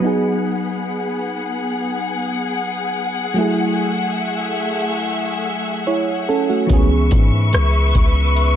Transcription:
Already playing: string section B3
0.00 fm electric piano F#3 B3, string section G#4 F#5
0.04 fm electric piano D#4 G#4
3.34 fm electric piano F#3 A3, string section A3 E5
3.38 fm electric piano E4 G#4
5.87 fm electric piano E4 C#5
6.29 fm electric piano C#4 A4
6.49 fm electric piano A3 F#4
6.67 808-style bass C#2, fm electric piano E3 B3, string section B4 E5 C#6, kick, closed hi-hat
6.71 fm electric piano C#4 G#4
7.11 808-style bass G#2, kick, closed hi-hat
7.53 808-style bass C#2, cross-stick, closed hi-hat
7.95 808-style bass C#2, kick, closed hi-hat
8.36 closed hi-hat

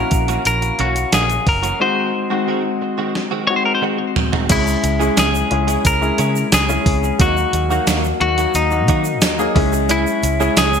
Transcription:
Already playing: grand piano A#3 C#4 E4 F#4, clean electric guitar A#4
0.11 fingered electric bass A#1, muted clean electric guitar stroke, kick, closed hi-hat, shaker
0.28 clean electric guitar E3 A#3 C#4 F#4, closed hi-hat, shaker
0.45 fingered electric bass A#1, clean electric guitar A#4, closed hi-hat, shaker
0.62 muted clean electric guitar stroke, closed hi-hat, shaker
0.79 fingered electric bass B1, clean electric guitar E3 A#3 C#4 F#4, closed hi-hat
0.96 muted clean electric guitar stroke, closed hi-hat, shaker
1.12 fingered electric bass A#1, clean electric guitar E3 A#3 C#4 F#4 G#4, snare, closed hi-hat, shaker
1.30 muted clean electric guitar stroke, closed hi-hat, shaker
1.46 fingered electric bass F#1, clean electric guitar A#4, muted clean electric guitar stroke, kick, open hi-hat
1.62 clean electric guitar E3 A#3 C#4 F#4, closed hi-hat, shaker
1.80 clean electric guitar D#3 G#3 C4 F#4 C5, grand piano G#3 C4 D#4 F#4
2.14 muted clean electric guitar stroke
2.30 clean electric guitar D#3 G#3 C4 F#4, grand piano G#3 C4 D#4 F#4
2.47 clean electric guitar D#3 G#3 C4 F#4
2.64 muted clean electric guitar stroke
2.81 muted clean electric guitar stroke
2.98 clean electric guitar D#3 G#3 C4 F#4
3.15 muted clean electric guitar stroke, snare
3.31 clean electric guitar D#3 G#3 C4 F#4
3.47 grand piano G#3 C4 D#4 F#4, clean electric guitar C#5, muted clean electric guitar stroke
3.56 clean electric guitar C5
3.65 clean electric guitar A#4, muted clean electric guitar stroke
3.75 clean electric guitar C5
3.82 clean electric guitar D#3 G#3 C4 F#4
3.99 muted clean electric guitar stroke
4.16 muted clean electric guitar stroke, floor tom
4.32 clean electric guitar D#3 G#3 C4 F#4, floor tom
4.49 fingered electric bass C#2, clean electric guitar G#3 C#4 E4 G#4, grand piano G#3 C#4 E4 G#4, kick, closed hi-hat, crash, shaker
4.66 muted clean electric guitar stroke, shaker
4.83 fingered electric bass C#2, muted clean electric guitar stroke, closed hi-hat, shaker
4.99 grand piano G#3 C#4 E4 G#4, clean electric guitar G#3 C#4 E4 G#4, shaker
5.16 fingered electric bass C#2, clean electric guitar G#3 C#4 E4 G#4, snare, closed hi-hat, tambourine, shaker
5.34 muted clean electric guitar stroke, shaker
5.50 fingered electric bass C#2, grand piano G#3 C#4 E4 G#4, muted clean electric guitar stroke, closed hi-hat
5.67 clean electric guitar G#3 C#4 E4 G#4, closed hi-hat, shaker
5.85 fingered electric bass C#2, clean electric guitar A#4, kick, closed hi-hat, shaker
6.01 grand piano G#3 C#4 E4 G#4, muted clean electric guitar stroke, shaker
6.18 fingered electric bass C#3, clean electric guitar G#3 C#4 E4 G#4, closed hi-hat, shaker
6.35 muted clean electric guitar stroke, shaker
6.52 fingered electric bass C#2, clean electric guitar G#4, muted clean electric guitar stroke, snare, closed hi-hat, tambourine, shaker
6.68 grand piano G#3 C#4 E4 G#4, muted clean electric guitar stroke, shaker
6.86 fingered electric bass C#2, kick, open hi-hat
7.03 muted clean electric guitar stroke, shaker
7.18 fingered electric bass D#2, grand piano F#3 A#3 D#4 F#4, clean electric guitar F#3 A#3 D#4 F#4, kick, closed hi-hat, shaker
7.37 muted clean electric guitar stroke, shaker
7.53 fingered electric bass D#2, muted clean electric guitar stroke, closed hi-hat, shaker
7.69 grand piano F#3 A#3 D#4 F#4, clean electric guitar F#3 A#3 D#4 F#4, shaker
7.87 fingered electric bass D#2, clean electric guitar F#3 A#3 D#4 F#4, snare, closed hi-hat, tambourine, shaker
8.04 muted clean electric guitar stroke, shaker
8.20 fingered electric bass D#2, grand piano F#3 A#3 D#4 F#4, clean electric guitar F#4, muted clean electric guitar stroke, closed hi-hat
8.38 clean electric guitar F#3 A#3 D#4 F#4, closed hi-hat, shaker
8.54 fingered electric bass D#2, clean electric guitar D#4, closed hi-hat, shaker
8.71 grand piano F#3 A#3 D#4 F#4, muted clean electric guitar stroke, shaker
8.88 fingered electric bass D#3, clean electric guitar F#3 A#3 D#4 F#4, kick, closed hi-hat, shaker
9.05 muted clean electric guitar stroke, shaker
9.22 fingered electric bass D#2, muted clean electric guitar stroke, snare, closed hi-hat, tambourine, shaker
9.38 grand piano F#3 A#3 D#4 G#4, muted clean electric guitar stroke, shaker
9.55 fingered electric bass C#2, grand piano G#3 C#4 E4 G#4, kick, open hi-hat
9.73 muted clean electric guitar stroke, shaker
9.89 clean electric guitar G#3 C#4 E4 G#4, closed hi-hat, shaker
10.06 muted clean electric guitar stroke, shaker
10.23 fingered electric bass C#2, muted clean electric guitar stroke, closed hi-hat, shaker
10.40 grand piano G#3 C#4 E4 G#4, clean electric guitar G#3 C#4 E4 G#4, shaker
10.57 fingered electric bass C#2, clean electric guitar G#3 C#4 E4 G#4, snare, closed hi-hat, tambourine, shaker
10.74 muted clean electric guitar stroke, shaker

